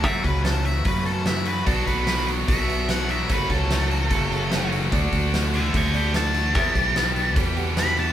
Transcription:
<<
  \new Staff \with { instrumentName = "Lead electric guitar" } { \time 4/4 \key fis \phrygian \tempo 4 = 148 e''8 b'8 a'8 e''8 b'8 a'8 e''8 b'8 | a'8 b'4 r8 e''4 fis''8 e''8 | b'8 a'2. r8 | r4. <d'' fis''>8 <fis'' a''>8 <d'' b''>8 a''4~ |
a''2 r4 b''8 a''8 | }
  \new Staff \with { instrumentName = "Reed electric piano" } { \time 4/4 \key fis \phrygian <fis' a' cis''>4. r4 <fis' a' b'>4 r8 | <fis' b' d''>4. r4 <fis' b' e''>4 r8 | <fis' a' cis''>4. r4 <fis' a' cis''>4 r8 | <fis' a' d''>4. r4 <fis' a' d''>4 r8 |
<g' b' e''>4. r4 <g' b' fis''>4 r8 | }
  \new Staff \with { instrumentName = "Distorted electric guitar" } { \time 4/4 \key fis \phrygian <fis, cis fis a cis' fis'>2.~ <fis, cis fis a cis' fis'>8 <fis, cis fis a cis' fis'>8 | <b, fis b d' fis'>2.~ <b, fis b d' fis'>8 <b, fis b d' fis'>8 | <fis, cis fis a cis' fis'>2.~ <fis, cis fis a cis' fis'>8 <fis, cis fis a cis' fis'>8 | <d a d' fis'>2.~ <d a d' fis'>8 <d a d' fis'>8 |
<e, b, e g b g'>2.~ <e, b, e g b g'>8 <e, b, e g b g'>8 | }
  \new Staff \with { instrumentName = "Distorted electric guitar" } { \time 4/4 \key fis \phrygian r1 | <b, fis b d' fis'>2 <b, fis b d' fis'>2 | <fis, cis fis a cis' fis'>2 <fis, cis fis a cis' fis'>2 | <d a d' fis'>2 <d a d' fis'>2 |
<e, b, e g b g'>2 <e, b, e g b g'>2 | }
  \new Staff \with { instrumentName = "Fingered electric bass" } { \clef bass \time 4/4 \key fis \phrygian fis,8 cis,4. fis,2 | b,,8 b,,4. b,,2 | fis,,8 cis,4. fis,,2 | d,8 d,4. d,2 |
e,8 b,,4. e,2 | }
  \new DrumStaff \with { instrumentName = "Drums" } \drummode { \time 4/4 <hho bd>8 <hho bd>8 <hho sn>8 hho8 <hho bd>8 hho8 <hho sn>8 hho8 | <hho bd>8 <hho bd>8 <hho sn>8 hho8 <hho bd>8 hho8 <hho sn>8 hho8 | <hho bd>8 <hho bd>8 <hho sn>8 hho8 <hho bd>8 hho8 <hho sn>8 hho8 | <hho bd>8 <hho bd>8 <hho sn>8 hho8 <hho bd>8 hho8 <hho sn>8 hho8 |
<hho bd>8 <hho bd>8 <hho sn>8 hho8 <hho bd>8 hho8 <hho sn>8 hho8 | }
>>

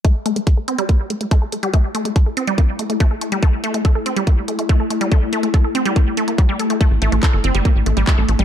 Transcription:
<<
  \new Staff \with { instrumentName = "Synth drone" } { \time 4/4 \key c \mixolydian \tempo 4 = 142 <a e'>1~ | <a e'>1~ | <a e'>1~ | <a e'>1 |
d'1 | }
  \new Staff \with { instrumentName = "Synth arpeggio sound" } { \time 4/4 \key c \mixolydian a16 r16 a16 a16 a'16 a'16 c'16 g16 bes16 r16 a16 a16 a16 a'16 a16 g16 | a16 r16 a16 a16 a'16 a'16 c'16 g16 bes16 r16 a16 a16 a16 a'16 a16 g16 | a16 r16 a16 a16 a'16 a'16 c'16 g16 bes16 r16 a16 a16 a16 a'16 a16 g16 | a16 r16 a16 a16 a'16 a'16 c'16 g16 bes16 r16 a16 bes16 g16 g16 a'16 a16 |
a16 r16 a16 a16 a'16 a'16 c'16 g16 bes16 r16 a16 g16 a16 a'16 a16 g16 | }
  \new Staff \with { instrumentName = "Analog synth bass" } { \clef bass \time 4/4 \key c \mixolydian r1 | r1 | r1 | r1 |
r16 a,,16 a,,16 a,,16 r16 g,,16 g,,16 g,,16 r16 a,,16 a,,16 a,,16 r16 a,,16 a,,16 a,,16 | }
  \new DrumStaff \with { instrumentName = "Drums" } \drummode { \time 4/4 <hh bd>8 hh16 hh16 <hh bd>8 hh16 hh16 <hh bd>8 hh16 hh16 <hh bd>8 hh16 hh16 | <hh bd>8 hh16 hh16 <hh bd>8 hh16 hh16 <hh bd>8 hh16 hh16 <hh bd>8 hh16 hh16 | <hh bd>8 hh16 hh16 <hh bd>8 hh16 hh16 <hh bd>8 hh16 hh16 <hh bd>8 hh16 hh16 | <hh bd>8 hh16 hh16 <hh bd>8 hh16 hh16 <hh bd>8 hh16 hh16 <hh bd>8 hh16 hh16 |
<hh bd>8 hh16 hh16 <hc hh bd>8 hh16 hh16 <hh bd>8 hh16 hh16 <hc hh bd>8 hh16 hh16 | }
>>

